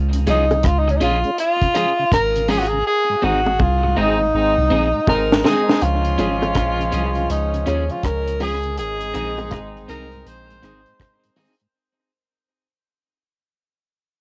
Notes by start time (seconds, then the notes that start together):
Already playing: C#2
0.13 C#3, closed hi-hat
0.26 C2 F3 G#3 C#4 D#4 F4 G#4, closed hi-hat, high bongo
0.50 C#3, closed hi-hat, high bongo
0.63 C#2 F4, kick, cross-stick, closed hi-hat
0.79 D#4
0.88 C#3 C#4, muted clean electric guitar stroke, closed hi-hat
0.96 D#4
1.00 A#1 F3 G#3 C#4 F4 G#4, closed hi-hat
1.24 G#3 C#4, closed hi-hat
1.38 F4, closed hi-hat
1.62 C#3, kick, closed hi-hat
1.74 F3 G#3 C#4 F4 G#4, cross-stick, closed hi-hat, high bongo
1.99 C#3
2.12 G#1 A#4, kick, cross-stick, closed hi-hat
2.36 C#3, closed hi-hat
2.48 F3 G#3 C#4 F4 G#4, open hi-hat, high bongo, low bongo
2.59 F#4
2.68 G#4, closed hi-hat
2.73 C#3
2.87 G#4
3.09 G#2
3.22 G#1 D#3 G#3 C4 D#4 F#4 G#4, high bongo
3.46 G#2, high bongo
3.59 C2 F4, kick, high bongo
3.83 G#2, muted clean electric guitar stroke
3.96 G#1 D#3 G#3 C4 D#4 G#4
4.21 G#2
4.34 G#1 G#3 C4 D#4
4.57 C2 G#2
4.70 A#1 D#3 G#3 C4 D#4 G#4, high bongo
4.94 G#2
5.07 G#1 G#3 C4 D#4 A#4, kick, high bongo
5.31 G#2, snare
5.44 D#3 G#3 C4 D#4 G#4, snare, high bongo, low bongo
5.68 G#3 C4, snare
5.81 C#2 F3 G#3 C#4 F4, closed hi-hat
6.05 C#3, closed hi-hat
6.18 G#1 F3 G#3 C#4 F4 G#4, closed hi-hat, high bongo
6.42 C#3, closed hi-hat, high bongo
6.55 A#1, kick, cross-stick, closed hi-hat, high bongo
6.80 C#3, closed hi-hat
6.92 C2 F3 G#3 C#4 F4 G#4, closed hi-hat
7.15 C#3, closed hi-hat
7.30 C#2 D#4, closed hi-hat
7.54 C#3, closed hi-hat
7.66 D#2 F3 G#3 C#4 F4 G#4, cross-stick, closed hi-hat, high bongo
7.89 C#3 F4, closed hi-hat
8.03 C#2 A#4, kick, cross-stick, closed hi-hat
8.28 C#3, closed hi-hat
8.40 F3 G#3 C#4 F4 G#4, open hi-hat, high bongo, low bongo
8.63 C#3, closed hi-hat
8.77 G#1 G#3 C4 D#4 G#4, closed hi-hat
9.01 G#2, closed hi-hat
9.14 A#1 D#3 G#3 C4 D#4 G#4, closed hi-hat, high bongo
9.38 G#2, closed hi-hat, high bongo
9.51 G#1, kick, cross-stick, closed hi-hat, high bongo
9.76 G#2, closed hi-hat
9.88 C2 D#3 G#3 C4 D#4 G#4 A#4, closed hi-hat
10.12 G#2, closed hi-hat
10.26 A#1 C5, closed hi-hat
10.50 G#2, closed hi-hat
10.62 G#1 D#3 G#3 C4 D#4 G#4, cross-stick, closed hi-hat, high bongo
10.86 G#2, closed hi-hat
10.99 kick, cross-stick, closed hi-hat
11.24 G#2, closed hi-hat
11.36 D#3 G#3 C4 D#4 G#4, open hi-hat, high bongo, low bongo
11.60 G#2, closed hi-hat